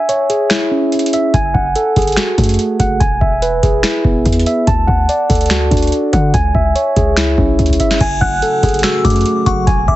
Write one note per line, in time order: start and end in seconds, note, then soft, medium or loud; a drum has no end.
0.00 1.12 E5 medium
0.00 0.92 G#5 loud
0.09 1.34 C#5 medium
0.09 closed hi-hat medium
0.30 1.34 G#4 medium
0.30 closed hi-hat medium
0.50 1.34 E4 medium
0.50 finger snap medium
0.50 snare loud
0.50 closed hi-hat medium
0.71 1.34 C#4 medium
0.92 closed hi-hat soft
0.99 closed hi-hat medium
1.06 closed hi-hat medium
1.13 1.34 E5 medium
1.13 closed hi-hat medium
1.34 1.54 F#1 loud
1.34 2.59 G#5 loud
1.34 kick loud
1.34 closed hi-hat medium
1.54 1.75 F#1 loud
1.54 2.79 F#5 medium
1.54 kick medium
1.76 3.01 A4 medium
1.76 closed hi-hat medium
1.96 2.16 F#1 loud
1.96 3.01 G#4 medium
1.96 kick medium
1.96 closed hi-hat medium
1.96 open hi-hat medium
2.02 closed hi-hat medium
2.07 closed hi-hat medium
2.12 closed hi-hat medium
2.17 3.00 F#4 medium
2.17 finger snap medium
2.17 snare loud
2.17 closed hi-hat medium
2.38 2.58 F#2 loud
2.38 3.01 A3 medium
2.38 kick medium
2.38 closed hi-hat medium
2.44 closed hi-hat medium
2.49 closed hi-hat medium
2.54 closed hi-hat medium
2.59 closed hi-hat medium
2.80 3.00 F#1 loud
2.80 3.01 F#5 medium
2.80 kick medium
2.80 closed hi-hat medium
3.00 3.21 E1 loud
3.00 4.25 G#5 loud
3.00 kick loud
3.00 closed hi-hat medium
3.21 3.61 E1 loud
3.21 4.46 E5 medium
3.21 kick medium
3.42 4.67 B4 medium
3.42 closed hi-hat medium
3.63 3.83 E1 loud
3.63 4.67 G#4 medium
3.63 kick medium
3.63 closed hi-hat medium
3.83 4.67 E4 medium
3.83 finger snap medium
3.83 snare loud
3.83 closed hi-hat medium
4.05 4.25 E1 loud
4.05 4.67 B3 medium
4.05 kick medium
4.26 4.46 E2 loud
4.26 kick medium
4.26 closed hi-hat medium
4.32 closed hi-hat medium
4.39 closed hi-hat medium
4.46 4.67 E5 medium
4.46 closed hi-hat medium
4.67 4.87 D2 loud
4.67 5.92 A5 loud
4.67 kick loud
4.67 closed hi-hat medium
4.87 5.08 D2 loud
4.87 6.12 F#5 medium
4.87 kick medium
5.09 6.34 D5 medium
5.09 closed hi-hat medium
5.29 5.70 D2 loud
5.29 6.34 A4 medium
5.29 kick medium
5.29 closed hi-hat medium
5.29 open hi-hat medium
5.35 closed hi-hat medium
5.41 closed hi-hat medium
5.46 closed hi-hat medium
5.50 6.34 F#4 medium
5.50 finger snap medium
5.50 snare loud
5.50 closed hi-hat medium
5.71 5.91 D2 loud
5.71 6.34 D4 medium
5.71 kick loud
5.71 closed hi-hat medium
5.77 closed hi-hat medium
5.82 closed hi-hat medium
5.87 closed hi-hat medium
5.92 closed hi-hat medium
6.13 6.33 D3 loud
6.13 6.34 F#5 medium
6.13 kick medium
6.13 closed hi-hat medium
6.34 6.54 C#2 loud
6.34 7.59 G#5 loud
6.34 kick loud
6.34 closed hi-hat medium
6.55 6.75 C#2 loud
6.55 7.79 E5 medium
6.55 kick medium
6.76 8.01 C#5 medium
6.76 closed hi-hat medium
6.96 7.36 C#2 loud
6.96 8.01 G#4 medium
6.96 kick medium
6.96 closed hi-hat medium
7.17 8.01 E4 medium
7.17 finger snap medium
7.17 snare loud
7.17 closed hi-hat medium
7.38 7.58 B1 loud
7.38 8.01 C#4 medium
7.38 kick medium
7.59 7.79 C#2 loud
7.59 kick medium
7.59 closed hi-hat soft
7.66 closed hi-hat medium
7.70 kick medium
7.70 closed hi-hat medium
7.80 8.01 E5 medium
7.80 kick medium
7.80 closed hi-hat medium
7.91 snare medium
8.01 8.21 F#1 loud
8.01 9.66 C#3 medium
8.01 9.96 F#3 medium
8.01 9.66 A3 medium
8.01 9.66 F#4 medium
8.01 9.26 G#5 loud
8.01 kick loud
8.01 closed hi-hat medium
8.01 crash loud
8.21 8.41 F#1 loud
8.21 9.45 F#5 medium
8.21 8.41 F#6 medium
8.21 kick medium
8.42 9.67 A4 medium
8.42 closed hi-hat medium
8.63 8.83 F#1 loud
8.63 9.67 G#4 medium
8.63 kick loud
8.63 closed hi-hat medium
8.63 open hi-hat medium
8.69 closed hi-hat medium
8.74 closed hi-hat medium
8.79 closed hi-hat medium
8.83 9.67 F#4 medium
8.83 9.04 E6 medium
8.83 finger snap medium
8.83 snare loud
8.83 closed hi-hat medium
9.05 9.25 F#2 loud
9.05 9.68 A3 medium
9.05 9.44 D6 medium
9.05 kick loud
9.05 closed hi-hat medium
9.10 closed hi-hat medium
9.16 closed hi-hat medium
9.21 closed hi-hat medium
9.26 closed hi-hat medium
9.46 9.66 F#1 loud
9.46 9.67 F#5 medium
9.46 9.66 C#6 medium
9.46 kick medium
9.46 closed hi-hat medium
9.67 9.87 E1 loud
9.67 9.96 E3 medium
9.67 9.96 B3 medium
9.67 9.96 G#4 medium
9.67 9.96 G#5 loud
9.67 kick loud
9.67 closed hi-hat medium
9.88 9.96 E1 loud
9.88 9.96 E5 medium
9.88 9.96 D6 medium
9.88 kick medium